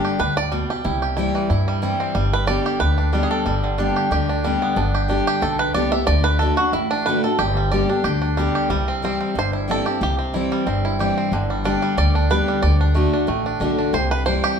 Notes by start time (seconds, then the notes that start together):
Already playing: G2 D3 G3 B3 D4 G4
0.04 G4
0.19 D2 A2 B4
0.37 D5
0.52 B2 G3
0.70 G4
0.84 C2 C3 E4
1.02 G4
1.17 E3 G3 C4 E4
1.35 E3
1.50 G2 E4
1.68 G3
1.82 E3 G3 C4 E4
2.00 C4
2.15 G1 G2 G3
2.33 B4
2.47 D3 G3 B3 G4 D5
2.66 G4
2.80 D2 D3 B4
2.98 D4
3.13 D3 G3 B3 G4
3.23 G#4
3.31 A4
3.46 G1 G2 G3
3.64 D3
3.78 D3 G3 B3 D4 G4
3.96 G4
4.11 D2 D3 G4
4.29 D4
4.44 D3 G3 B3 G4
4.62 B3
4.76 G1 G2 D4
4.94 G4
5.08 D3 G3 B3 D4 G4
5.27 G4
5.42 B1 D3 A4
5.59 B4
5.74 C2 D3 G3 B3 G4 D5
5.92 B3 G4 E5
6.07 D2 D3 D5
6.24 B4
6.39 D3 A3 D4 F#4 A4
6.57 D4 F#4
6.72 A1 A2 E4
6.91 D4
7.06 D3 A3 D4 F#4 B4
7.24 D4 F#4 A4
7.39 G1 G2 G4
7.57 G3
7.72 D3 G3 B3 G4 D5
7.89 B3 D4 G4
8.04 D2 D3 G4
8.22 D4
8.37 D3 G3 B3 G4
8.55 G4
8.70 C2 C3 G3
8.88 C4
9.02 E3 G3 C4 E4
9.21 C4
9.35 G1 G2 C5
9.53 E4
9.68 E3 G3 C4 E4 A4
9.85 C4 E4 G4
10.01 C2 C3 G4
10.19 C4
10.34 E3 G3 C4 E4
10.52 G3
10.66 G1 G2 C4
10.85 E4
10.99 E3 G3 C4 E4 G4
11.18 C4
11.32 G1 G2 D3
11.50 G3
11.64 D3 G3 B3 D4 G4
11.82 G3
11.97 D2 D3 D5
12.15 D4
12.30 D3 G3 B3 G4 B4
12.48 G3
12.62 D2 D3 D5
12.81 D4
12.94 D3 A3 D4 F#4
13.13 D4
13.27 A1 A2 A3
13.46 D4
13.60 B1 D3 A3 D4 F#4
13.78 D4
13.93 C2 C3 C5
14.11 B4
14.25 E3 G3 C4 E4 C5
14.44 G4